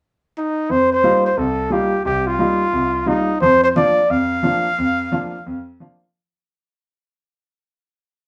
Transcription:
0.38 0.73 D#4 medium
0.70 0.99 F2 medium
0.70 0.92 C5 medium
0.93 1.23 C5 medium
1.04 1.26 G3 medium
1.04 1.26 A#3 soft
1.04 1.26 D#4 medium
1.04 1.26 F4 medium
1.26 1.40 C5 medium
1.37 1.67 C2 medium
1.37 1.74 A4 medium
1.70 1.93 G3 soft
1.70 1.93 A#3 soft
1.70 1.94 D#4 soft
1.70 1.94 F4 medium
1.70 2.05 G4 medium
2.05 2.35 C2 medium
2.05 2.34 C3 medium
2.05 2.29 G4 medium
2.27 3.09 F4 medium
2.39 2.61 G3 medium
2.39 2.62 A#3 soft
2.39 2.62 D#4 soft
2.39 2.62 F4 medium
2.73 3.02 C2 medium
3.06 3.29 G3 soft
3.06 3.29 A#3 soft
3.06 3.29 D#4 soft
3.06 3.40 D#4 medium
3.06 3.30 F4 medium
3.41 3.71 F2 medium
3.41 3.71 F3 medium
3.41 3.60 C5 loud
3.64 3.69 C5 medium
3.76 3.98 F3 medium
3.76 3.98 A#3 soft
3.76 3.98 D4 soft
3.76 3.98 F4 medium
3.76 4.12 D5 medium
4.10 4.39 F2 medium
4.10 5.80 F5 medium
4.43 4.65 F3 soft
4.43 4.66 A#3 soft
4.43 4.66 D4 soft
4.43 4.66 F4 medium
4.78 5.07 F2 medium
5.12 5.34 F3 medium
5.12 5.34 A#3 medium
5.12 5.34 D4 soft
5.12 5.34 F4 medium
5.46 5.75 F2 medium
5.80 6.02 F3 medium
5.80 6.03 A#3 soft
5.80 6.03 D4 soft
5.80 6.03 F4 medium

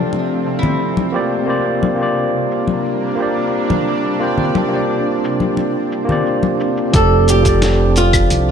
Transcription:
0.00 6.90 C3 medium
0.00 1.10 F3 medium
0.00 1.17 F3 medium
0.00 1.10 A3 medium
0.00 1.12 C4 medium
0.00 0.58 D4 medium
0.00 1.09 D4 medium
0.00 1.13 F4 medium
0.00 1.14 G4 medium
0.00 1.16 A4 medium
0.00 1.12 D5 medium
0.00 1.16 G5 medium
0.12 muted conga soft
0.12 shaker soft
0.46 shaker medium
0.59 1.22 E4 medium
0.63 low conga medium
0.80 shaker soft
0.97 high conga medium
1.12 6.90 G3 medium
1.12 1.32 A#3 medium
1.12 3.84 A#3 medium
1.12 6.90 D4 medium
1.12 1.33 F4 medium
1.12 1.33 G4 medium
1.12 1.34 C5 medium
1.12 1.34 D5 medium
1.12 shaker medium
1.32 shaker soft
1.46 1.94 A#3 medium
1.46 1.95 F4 medium
1.46 1.95 G4 medium
1.46 1.96 C5 medium
1.46 1.96 D5 medium
1.46 shaker soft
1.83 high conga medium
1.83 shaker medium
1.96 3.13 A#3 medium
1.96 3.14 F4 medium
1.96 3.15 G4 medium
2.00 3.16 C5 medium
2.00 3.16 D5 medium
2.00 shaker soft
2.17 shaker soft
2.51 shaker medium
2.68 high conga medium
2.68 shaker soft
2.85 shaker soft
3.15 4.15 A#3 medium
3.15 4.16 F4 medium
3.15 4.17 G4 medium
3.19 4.18 C5 medium
3.19 4.19 D5 medium
3.19 shaker medium
3.37 shaker soft
3.53 shaker soft
3.70 high conga medium
3.70 low conga medium
3.87 6.91 C4 medium
3.87 shaker medium
4.05 shaker soft
4.19 4.32 A#3 medium
4.19 4.33 F4 medium
4.19 4.33 G4 medium
4.19 4.33 C5 medium
4.19 4.34 G5 medium
4.19 shaker soft
4.38 low conga medium
4.55 high conga medium
4.55 shaker medium
4.69 6.03 A#3 medium
4.69 6.04 F4 medium
4.69 6.05 G4 medium
4.73 6.06 C5 medium
4.73 6.07 D5 medium
4.73 shaker soft
4.90 shaker soft
5.24 shaker medium
5.40 high conga medium
5.40 shaker soft
5.57 muted conga soft
5.57 shaker soft
5.92 shaker medium
6.05 6.88 A#3 medium
6.05 6.89 F4 medium
6.05 6.90 G4 medium
6.09 6.91 C5 medium
6.09 6.92 D5 medium
6.09 low conga medium
6.09 shaker soft
6.26 shaker soft
6.43 high conga medium
6.60 shaker medium
6.77 shaker soft
6.92 8.22 F1 loud
6.92 8.51 C3 medium
6.92 7.40 F3 medium
6.92 8.51 F3 medium
6.92 8.51 A3 medium
6.92 7.41 C4 medium
6.92 8.51 D4 medium
6.92 7.41 G4 medium
6.92 7.42 A4 medium
6.92 7.27 A4 medium
6.92 7.42 D5 loud
6.92 kick loud
6.92 closed hi-hat medium
6.92 shaker soft
7.28 7.97 G4 medium
7.28 closed hi-hat soft
7.28 shaker medium
7.42 8.51 F3 medium
7.42 8.51 C4 medium
7.42 8.51 G4 medium
7.42 kick loud
7.42 closed hi-hat soft
7.42 shaker soft
7.47 8.51 A4 medium
7.47 8.51 D5 medium
7.62 snare medium
7.62 closed hi-hat medium
7.62 shaker soft
7.96 8.51 F4 medium
7.96 closed hi-hat soft
7.96 shaker medium
8.13 kick loud
8.13 closed hi-hat soft
8.13 claves medium
8.13 shaker soft
8.30 8.51 C2 medium
8.30 closed hi-hat medium
8.30 shaker soft

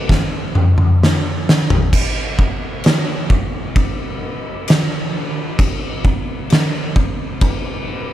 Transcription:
0.09 kick medium
0.09 snare medium
0.55 mid tom medium
0.78 mid tom medium
1.03 snare medium
1.49 snare loud
1.70 floor tom medium
1.93 kick loud
1.93 crash loud
1.93 crash medium
2.39 kick loud
2.84 snare loud
2.84 crash medium
3.30 kick medium
3.76 kick loud
3.76 crash medium
4.68 snare loud
4.68 crash medium
5.59 kick loud
5.59 crash medium
6.05 kick loud
6.50 snare loud
6.50 crash medium
6.96 kick medium
7.41 kick loud
7.41 crash medium

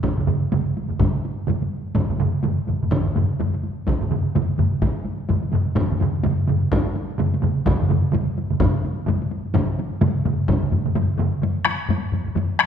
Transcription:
0.03 taiko medium
0.03 taiko low-mid medium
0.03 taiko mid medium
0.03 taiko high medium
0.17 taiko low-mid medium
0.17 taiko mid medium
0.17 taiko high soft
0.27 taiko low-mid loud
0.27 taiko mid loud
0.27 taiko high soft
0.43 taiko high soft
0.52 taiko low-mid medium
0.52 taiko mid medium
0.52 taiko high medium
0.67 taiko high soft
0.77 taiko high soft
0.90 taiko low-mid medium
0.90 taiko mid medium
0.90 taiko high soft
0.99 taiko medium
0.99 taiko low-mid loud
0.99 taiko mid medium
0.99 taiko high medium
1.16 taiko high soft
1.25 taiko high soft
1.39 taiko high soft
1.47 taiko low-mid medium
1.47 taiko mid medium
1.47 taiko high medium
1.63 taiko high soft
1.87 taiko high soft
1.95 taiko medium
1.95 taiko low-mid medium
1.95 taiko mid medium
1.95 taiko high medium
2.10 taiko low-mid medium
2.10 taiko mid medium
2.10 taiko high soft
2.19 taiko low-mid medium
2.19 taiko mid loud
2.19 taiko high soft
2.34 taiko high soft
2.43 taiko low-mid medium
2.43 taiko mid medium
2.43 taiko high medium
2.57 taiko high soft
2.67 taiko low-mid medium
2.67 taiko mid medium
2.67 taiko high soft
2.82 taiko low-mid medium
2.82 taiko mid medium
2.82 taiko high soft
2.91 taiko loud
2.91 taiko low-mid medium
2.91 taiko mid medium
2.91 taiko high medium
3.06 taiko low-mid medium
3.06 taiko mid medium
3.06 taiko high soft
3.16 taiko low-mid medium
3.16 taiko mid loud
3.16 taiko high soft
3.31 taiko high soft
3.40 taiko low-mid loud
3.40 taiko mid medium
3.40 taiko high medium
3.54 taiko high soft
3.63 taiko high soft
3.87 taiko medium
3.87 taiko low-mid medium
3.87 taiko mid medium
3.87 taiko high medium
4.01 taiko low-mid medium
4.01 taiko mid medium
4.01 taiko high soft
4.11 taiko low-mid medium
4.11 taiko mid loud
4.11 taiko high soft
4.26 taiko high soft
4.35 taiko low-mid loud
4.35 taiko mid medium
4.35 taiko high medium
4.50 taiko high soft
4.58 taiko low-mid medium
4.58 taiko mid medium
4.58 taiko high soft
4.73 taiko high soft
4.82 taiko medium
4.82 taiko high medium
4.96 taiko high soft
5.05 taiko high soft
5.20 taiko high soft
5.29 taiko low-mid medium
5.29 taiko mid medium
5.29 taiko high medium
5.43 taiko high soft
5.52 taiko low-mid loud
5.52 taiko mid loud
5.52 taiko high soft
5.66 taiko high soft
5.75 taiko loud
5.75 taiko low-mid medium
5.75 taiko mid medium
5.75 taiko high medium
5.90 taiko low-mid medium
5.90 taiko mid medium
5.90 taiko high soft
6.00 taiko low-mid medium
6.00 taiko mid loud
6.00 taiko high medium
6.23 taiko low-mid loud
6.23 taiko mid medium
6.23 taiko high medium
6.38 taiko high soft
6.48 taiko low-mid loud
6.48 taiko mid loud
6.48 taiko high medium
6.62 taiko high soft
6.72 taiko loud
6.72 taiko high medium
6.87 taiko high soft
6.96 taiko high medium
7.10 taiko high soft
7.18 taiko low-mid loud
7.18 taiko mid loud
7.18 taiko high medium
7.34 taiko high medium
7.42 taiko low-mid medium
7.42 taiko mid loud
7.42 taiko high soft
7.58 taiko high soft
7.66 taiko loud
7.66 taiko low-mid medium
7.66 taiko mid medium
7.66 taiko high medium
7.80 taiko low-mid medium
7.80 taiko mid medium
7.80 taiko high soft
7.89 taiko low-mid loud
7.89 taiko mid loud
7.89 taiko high medium
8.05 taiko high soft
8.12 taiko low-mid medium
8.12 taiko mid loud
8.12 taiko high medium
8.28 taiko high soft
8.38 taiko high medium
8.50 taiko low-mid medium
8.50 taiko mid medium
8.50 taiko high soft
8.60 taiko loud
8.60 taiko low-mid loud
8.60 taiko mid medium
8.60 taiko high medium
8.85 taiko high medium
8.99 taiko high soft
9.06 taiko low-mid loud
9.06 taiko mid loud
9.06 taiko high medium
9.22 taiko high medium
9.31 taiko high medium
9.46 taiko high soft
9.54 taiko loud
9.54 taiko low-mid medium
9.54 taiko mid loud
9.54 taiko high medium
9.69 taiko high soft
9.79 taiko high medium
9.93 taiko high soft
10.01 taiko low-mid loud
10.01 taiko mid loud
10.01 taiko high medium
10.16 taiko high soft
10.25 taiko low-mid medium
10.25 taiko mid loud
10.25 taiko high medium
10.40 taiko high soft
10.48 taiko loud
10.48 taiko low-mid medium
10.48 taiko mid medium
10.48 taiko high medium
10.63 taiko low-mid medium
10.63 taiko mid medium
10.63 taiko high soft
10.72 taiko low-mid medium
10.72 taiko mid medium
10.72 taiko high medium
10.86 taiko low-mid medium
10.86 taiko mid medium
10.86 taiko high soft
10.95 taiko low-mid loud
10.95 taiko mid loud
10.95 taiko high medium
11.18 taiko low-mid loud
11.18 taiko mid loud
11.18 taiko high soft
11.34 taiko high soft
11.42 taiko low-mid medium
11.42 taiko high medium
11.57 taiko high soft
11.65 taiko rim medium
11.65 taiko high medium
11.89 taiko low-mid loud
11.89 taiko high medium
12.04 taiko high soft
12.12 taiko low-mid medium
12.12 taiko high medium
12.26 taiko low-mid medium
12.35 taiko low-mid loud
12.35 taiko high medium
12.51 taiko high soft
12.59 taiko rim medium

